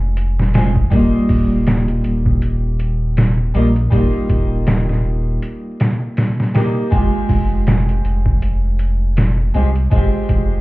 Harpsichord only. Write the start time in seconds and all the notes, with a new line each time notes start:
Already playing: G#3 C4 C#4 F4
0.55 G#3 C4 C#4 F4
0.90 G3 A#3
0.95 D#4 F4
3.54 G3 A#3 D#4 F4
3.90 G3 A#3
3.95 D#4 F4
6.54 G3 A#3 D#4 G4
6.90 G#3 C4
6.94 F4 G4
9.54 G#3 C4 F4 G4
9.91 G#3 C4
9.95 F4 G4